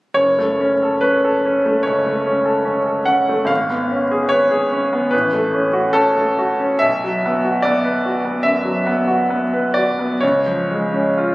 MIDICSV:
0, 0, Header, 1, 2, 480
1, 0, Start_track
1, 0, Key_signature, 3, "minor"
1, 0, Tempo, 860832
1, 93, Time_signature, 4, 2, 24, 8
1, 569, Tempo, 820793
1, 3449, Tempo, 873362
1, 3929, Tempo, 815217
1, 4889, Tempo, 853485
1, 5369, Tempo, 940439
1, 6414, End_track
2, 0, Start_track
2, 0, Title_t, "Grand piano"
2, 0, Program_c, 0, 0
2, 80, Note_on_c, 0, 73, 57
2, 91, Note_on_c, 0, 30, 38
2, 209, Control_c, 0, 64, 127
2, 215, Note_on_c, 0, 57, 32
2, 339, Note_on_c, 0, 61, 32
2, 406, Note_off_c, 0, 57, 0
2, 460, Note_on_c, 0, 69, 36
2, 525, Note_off_c, 0, 61, 0
2, 562, Note_on_c, 0, 71, 55
2, 563, Note_off_c, 0, 73, 0
2, 575, Note_on_c, 0, 61, 37
2, 645, Note_off_c, 0, 69, 0
2, 700, Note_on_c, 0, 69, 33
2, 765, Note_off_c, 0, 61, 0
2, 822, Note_on_c, 0, 61, 35
2, 888, Note_off_c, 0, 69, 0
2, 942, Note_on_c, 0, 57, 30
2, 1011, Note_off_c, 0, 61, 0
2, 1029, Note_off_c, 0, 30, 0
2, 1042, Note_on_c, 0, 73, 56
2, 1050, Note_off_c, 0, 71, 0
2, 1056, Note_on_c, 0, 37, 29
2, 1132, Note_off_c, 0, 57, 0
2, 1180, Note_on_c, 0, 57, 31
2, 1248, Note_off_c, 0, 37, 0
2, 1298, Note_on_c, 0, 61, 33
2, 1369, Note_off_c, 0, 57, 0
2, 1408, Note_on_c, 0, 69, 32
2, 1487, Note_off_c, 0, 61, 0
2, 1522, Note_on_c, 0, 61, 38
2, 1602, Note_off_c, 0, 69, 0
2, 1646, Note_on_c, 0, 69, 29
2, 1720, Note_off_c, 0, 61, 0
2, 1759, Note_on_c, 0, 78, 61
2, 1768, Note_off_c, 0, 73, 0
2, 1775, Note_on_c, 0, 61, 30
2, 1844, Note_off_c, 0, 69, 0
2, 1896, Note_on_c, 0, 57, 34
2, 1969, Note_off_c, 0, 61, 0
2, 1990, Note_on_c, 0, 32, 42
2, 2000, Note_on_c, 0, 77, 69
2, 2010, Note_off_c, 0, 78, 0
2, 2018, Note_off_c, 0, 57, 0
2, 2028, Control_c, 0, 64, 0
2, 2119, Control_c, 0, 64, 127
2, 2135, Note_on_c, 0, 59, 33
2, 2257, Note_on_c, 0, 61, 34
2, 2326, Note_off_c, 0, 59, 0
2, 2378, Note_on_c, 0, 68, 35
2, 2445, Note_off_c, 0, 61, 0
2, 2480, Note_on_c, 0, 73, 70
2, 2483, Note_off_c, 0, 77, 0
2, 2497, Note_on_c, 0, 71, 36
2, 2565, Note_off_c, 0, 68, 0
2, 2610, Note_on_c, 0, 68, 38
2, 2684, Note_off_c, 0, 71, 0
2, 2732, Note_on_c, 0, 61, 38
2, 2801, Note_off_c, 0, 68, 0
2, 2854, Note_on_c, 0, 59, 34
2, 2923, Note_off_c, 0, 61, 0
2, 2933, Note_off_c, 0, 32, 0
2, 2959, Note_on_c, 0, 71, 56
2, 2964, Note_off_c, 0, 73, 0
2, 2970, Note_on_c, 0, 33, 40
2, 2972, Note_off_c, 0, 59, 0
2, 2981, Control_c, 0, 64, 0
2, 3059, Control_c, 0, 64, 127
2, 3090, Note_on_c, 0, 57, 35
2, 3210, Note_on_c, 0, 61, 34
2, 3281, Note_off_c, 0, 57, 0
2, 3325, Note_on_c, 0, 66, 38
2, 3400, Note_off_c, 0, 61, 0
2, 3440, Note_on_c, 0, 69, 74
2, 3442, Note_off_c, 0, 71, 0
2, 3451, Note_on_c, 0, 61, 40
2, 3514, Note_off_c, 0, 66, 0
2, 3565, Note_on_c, 0, 57, 34
2, 3636, Note_off_c, 0, 61, 0
2, 3691, Note_on_c, 0, 66, 37
2, 3760, Note_off_c, 0, 57, 0
2, 3808, Note_on_c, 0, 61, 37
2, 3883, Note_off_c, 0, 66, 0
2, 3905, Note_off_c, 0, 33, 0
2, 3912, Note_on_c, 0, 76, 75
2, 3924, Note_off_c, 0, 69, 0
2, 3926, Note_on_c, 0, 35, 48
2, 3928, Note_off_c, 0, 61, 0
2, 3939, Control_c, 0, 64, 0
2, 4053, Control_c, 0, 64, 127
2, 4059, Note_on_c, 0, 54, 35
2, 4186, Note_on_c, 0, 59, 38
2, 4250, Note_off_c, 0, 54, 0
2, 4299, Note_on_c, 0, 66, 40
2, 4373, Note_off_c, 0, 59, 0
2, 4403, Note_on_c, 0, 74, 60
2, 4407, Note_off_c, 0, 76, 0
2, 4420, Note_on_c, 0, 59, 39
2, 4489, Note_off_c, 0, 66, 0
2, 4533, Note_on_c, 0, 71, 39
2, 4607, Note_off_c, 0, 59, 0
2, 4659, Note_on_c, 0, 66, 37
2, 4722, Note_off_c, 0, 71, 0
2, 4772, Note_on_c, 0, 59, 34
2, 4844, Note_off_c, 0, 66, 0
2, 4863, Note_off_c, 0, 35, 0
2, 4877, Note_on_c, 0, 76, 67
2, 4882, Note_off_c, 0, 74, 0
2, 4887, Note_on_c, 0, 42, 31
2, 4957, Note_off_c, 0, 59, 0
2, 5001, Note_on_c, 0, 54, 34
2, 5073, Note_off_c, 0, 42, 0
2, 5123, Note_on_c, 0, 59, 35
2, 5193, Note_off_c, 0, 54, 0
2, 5240, Note_on_c, 0, 66, 37
2, 5319, Note_off_c, 0, 59, 0
2, 5369, Note_on_c, 0, 59, 36
2, 5436, Note_off_c, 0, 66, 0
2, 5488, Note_on_c, 0, 71, 31
2, 5554, Note_off_c, 0, 59, 0
2, 5592, Note_on_c, 0, 74, 57
2, 5596, Note_off_c, 0, 76, 0
2, 5600, Note_on_c, 0, 66, 30
2, 5674, Note_off_c, 0, 71, 0
2, 5720, Note_on_c, 0, 59, 34
2, 5791, Note_off_c, 0, 66, 0
2, 5830, Note_on_c, 0, 73, 57
2, 5835, Note_off_c, 0, 74, 0
2, 5840, Note_off_c, 0, 59, 0
2, 5841, Note_on_c, 0, 37, 41
2, 5849, Control_c, 0, 64, 0
2, 5932, Control_c, 0, 64, 127
2, 5962, Note_on_c, 0, 53, 32
2, 6088, Note_on_c, 0, 56, 31
2, 6158, Note_off_c, 0, 53, 0
2, 6202, Note_on_c, 0, 61, 34
2, 6281, Note_off_c, 0, 56, 0
2, 6325, Note_on_c, 0, 65, 34
2, 6398, Note_off_c, 0, 61, 0
2, 6414, Note_off_c, 0, 37, 0
2, 6414, Note_off_c, 0, 65, 0
2, 6414, Note_off_c, 0, 73, 0
2, 6414, End_track
0, 0, End_of_file